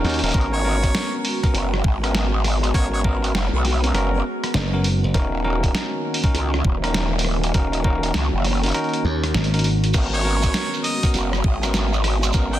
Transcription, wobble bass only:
0.23 0.32 D#1 loud
0.34 0.93 G#1 loud
1.54 1.82 F#1 loud
1.84 2.73 G#1 loud
2.74 3.32 G#1 loud
3.34 3.50 F#1 loud
3.53 3.92 B1 loud
3.94 4.22 F#1 loud
5.14 5.72 D#1 medium
6.34 6.62 C#2 loud
6.64 7.52 D#1 loud
7.54 8.13 D#1 loud
8.15 8.30 C#2 loud
8.33 8.72 F#1 loud
9.94 10.52 G#1 loud
11.14 11.43 F#1 loud
11.44 12.32 G#1 loud
12.34 12.59 G#1 loud

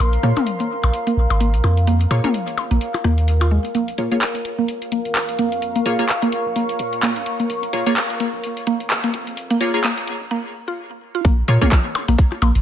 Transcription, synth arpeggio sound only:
0.23 0.30 A#3 loud
0.60 0.65 A#3 medium
1.07 1.12 A#3 loud
1.40 1.48 A#3 medium
1.87 1.94 A#3 loud
2.24 2.29 A#3 medium
2.71 2.76 A#3 loud
3.04 3.09 A#3 loud
3.41 3.47 F4 loud
3.51 3.58 G#3 medium
3.75 3.82 A#3 loud
4.12 4.17 A#3 medium
4.58 4.64 A#3 loud
4.92 4.99 A#3 medium
5.39 5.46 A#3 loud
5.76 5.81 A#3 medium
6.22 6.28 A#3 loud
6.56 6.63 A#3 medium
7.03 7.10 A#3 loud
7.40 7.45 A#3 medium
7.87 7.92 A#3 loud
8.20 8.27 A#3 medium
8.67 8.74 A#3 loud
9.04 9.09 A#3 medium
9.51 9.56 A#3 loud
9.84 9.91 A#3 medium
10.31 10.38 A#3 loud
10.68 10.73 F4 medium
11.15 11.18 F4 medium
11.25 11.32 A#3 loud
11.62 11.67 A#3 medium
12.08 12.14 A#3 loud
12.42 12.49 A#3 medium

